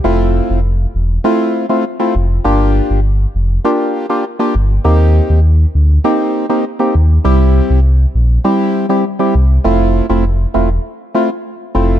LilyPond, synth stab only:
\new Staff \with { instrumentName = "Synth stab" } { \time 4/4 \key f \major \tempo 4 = 100 <a c' e' f'>4 r4 <a c' e' f'>8. <a c' e' f'>16 r16 <a c' e' f'>16 r8 | <bes d' f' g'>4 r4 <bes d' f' g'>8. <bes d' f' g'>16 r16 <bes d' f' g'>16 r8 | <bes c' ees' g'>4 r4 <bes c' ees' g'>8. <bes c' ees' g'>16 r16 <bes c' ees' g'>16 r8 | <g c' e' g'>4 r4 <g c' e' g'>8. <g c' e' g'>16 r16 <g c' e' g'>16 r8 |
<a c' e' f'>8. <a c' e' f'>16 r8 <a c' e' f'>16 r8. <a c' e' f'>16 r8. <a c' e' f'>8 | }